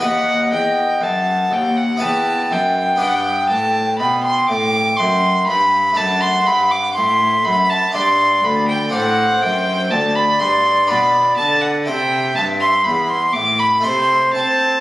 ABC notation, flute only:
X:1
M:3/4
L:1/8
Q:1/4=61
K:G
V:1 name="Flute"
^d2 f2 g2- | g4- g z | f2 e2 d2 | [K:Clyd] c2 d4 |
e3 z c2 |]